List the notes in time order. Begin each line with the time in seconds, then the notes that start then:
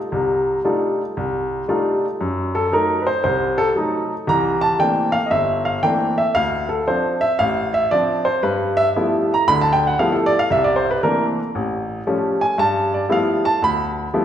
0.12 C2 C3
0.65 G3 A3 D4 D#4 F4
1.17 C2
1.68 G3 A3 D4 D#4 F4
2.21 F#2
2.55 A4
2.72 F#3 A3 D#4 A#4
3.02 B4
3.07 C5
3.24 C2 C5
3.58 A4
3.76 F#3 A3 D#4
4.27 C2 E3 A#5
4.61 A5
4.79 E3 A3 A#3 C4 D4 G5
5.12 F5
5.26 D#5
5.31 G1 E5
5.65 F5
5.83 E3 A3 A#3 C4 D4 G5
6.18 E5
6.35 D2 F5
6.69 A4
6.88 F3 C4 D4 C5
7.21 E5
7.39 A1 F5
7.74 E5
7.91 F3 C4 D4 D5
8.25 C5
8.43 G2 B4
8.77 E5
8.96 F3 G3 A3 B3 E4
9.34 A#5
9.48 D2 D3 B5
9.61 A5
9.73 G5
9.87 F#5
9.99 F3 G3 A3 B3 E4 F5
10.12 A4
10.26 D5
10.39 F5
10.51 C2 E5
10.64 D5
10.76 C5
10.91 B4
11.03 E3 A3 A#3 C4 D4 A#4
11.55 A1
12.07 F3 G3 A3 C#4
12.41 G#5
12.58 G2 A5
12.94 D5
13.09 F3 G3 A3 B3 E4 F5
13.45 A5
13.62 D2 B5
14.14 F3 G3 A3 B3 E4